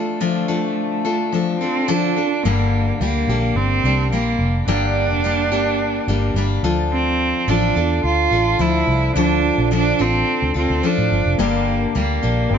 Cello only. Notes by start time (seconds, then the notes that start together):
Already playing: A3
1.60 C4
1.88 D4
2.44 A#3
3.00 A#3
3.57 C4
4.12 A#3
4.69 D4
6.93 C4
7.49 D4
8.05 F4
8.61 E4
9.17 D4
9.74 D4
10.01 C4
10.57 C4
10.87 D4
11.41 A#3
11.97 A#3
12.54 C4